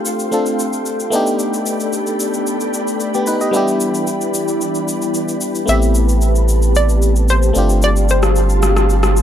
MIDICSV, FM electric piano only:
0, 0, Header, 1, 2, 480
1, 0, Start_track
1, 0, Key_signature, 0, "minor"
1, 0, Tempo, 535714
1, 1250, Time_signature, 4, 2, 24, 8
1, 8262, End_track
2, 0, Start_track
2, 0, Title_t, "FM electric piano"
2, 0, Program_c, 0, 5
2, 0, Control_c, 0, 64, 127
2, 0, Note_on_c, 0, 57, 64
2, 0, Note_on_c, 0, 60, 61
2, 0, Note_on_c, 0, 62, 58
2, 0, Note_on_c, 0, 65, 59
2, 0, Note_on_c, 0, 67, 73
2, 256, Note_off_c, 0, 57, 0
2, 267, Note_off_c, 0, 62, 0
2, 274, Note_off_c, 0, 65, 0
2, 276, Note_off_c, 0, 60, 0
2, 279, Note_off_c, 0, 67, 0
2, 281, Note_on_c, 0, 57, 53
2, 287, Note_on_c, 0, 60, 52
2, 292, Note_on_c, 0, 62, 52
2, 298, Note_on_c, 0, 65, 53
2, 303, Note_on_c, 0, 69, 61
2, 978, Note_off_c, 0, 57, 0
2, 989, Note_on_c, 0, 57, 78
2, 1001, Note_off_c, 0, 62, 0
2, 1001, Note_on_c, 0, 59, 70
2, 1008, Note_off_c, 0, 60, 0
2, 1012, Note_on_c, 0, 62, 71
2, 1014, Note_off_c, 0, 65, 0
2, 1016, Note_off_c, 0, 69, 0
2, 1019, Control_c, 0, 64, 0
2, 1023, Note_on_c, 0, 63, 70
2, 1035, Note_on_c, 0, 67, 84
2, 1183, Control_c, 0, 64, 127
2, 2651, Note_off_c, 0, 59, 0
2, 2657, Note_off_c, 0, 62, 0
2, 2663, Note_off_c, 0, 63, 0
2, 2669, Note_off_c, 0, 67, 0
2, 2818, Note_on_c, 0, 67, 62
2, 2823, Note_on_c, 0, 59, 54
2, 2884, Note_off_c, 0, 57, 0
2, 2926, Note_off_c, 0, 67, 0
2, 2928, Note_off_c, 0, 59, 0
2, 2933, Note_on_c, 0, 71, 71
2, 2938, Note_on_c, 0, 63, 57
2, 3050, Note_off_c, 0, 71, 0
2, 3053, Note_off_c, 0, 63, 0
2, 3056, Note_on_c, 0, 75, 59
2, 3062, Note_on_c, 0, 67, 52
2, 3147, Note_on_c, 0, 55, 72
2, 3159, Note_on_c, 0, 59, 71
2, 3171, Note_on_c, 0, 62, 70
2, 3181, Note_on_c, 0, 64, 69
2, 3182, Note_off_c, 0, 67, 0
2, 3182, Control_c, 0, 64, 0
2, 3193, Note_on_c, 0, 67, 85
2, 3283, Note_off_c, 0, 75, 0
2, 3330, Control_c, 0, 64, 127
2, 5042, Note_off_c, 0, 55, 0
2, 5049, Note_off_c, 0, 59, 0
2, 5054, Note_off_c, 0, 62, 0
2, 5060, Note_off_c, 0, 64, 0
2, 5066, Note_off_c, 0, 67, 0
2, 5068, Note_on_c, 0, 57, 61
2, 5078, Note_on_c, 0, 59, 54
2, 5091, Note_on_c, 0, 60, 57
2, 5101, Note_on_c, 0, 64, 59
2, 5103, Control_c, 0, 64, 0
2, 5113, Note_on_c, 0, 67, 69
2, 5260, Control_c, 0, 64, 127
2, 6725, Note_off_c, 0, 57, 0
2, 6730, Note_off_c, 0, 59, 0
2, 6737, Note_off_c, 0, 60, 0
2, 6742, Note_off_c, 0, 64, 0
2, 6748, Note_off_c, 0, 67, 0
2, 6748, Note_on_c, 0, 57, 65
2, 6761, Note_on_c, 0, 60, 59
2, 6772, Note_on_c, 0, 62, 57
2, 6780, Control_c, 0, 64, 0
2, 6784, Note_on_c, 0, 65, 59
2, 6796, Note_on_c, 0, 67, 75
2, 6963, Control_c, 0, 64, 127
2, 8262, Note_off_c, 0, 57, 0
2, 8262, Note_off_c, 0, 60, 0
2, 8262, Note_off_c, 0, 62, 0
2, 8262, Note_off_c, 0, 65, 0
2, 8262, Note_off_c, 0, 67, 0
2, 8262, End_track
0, 0, End_of_file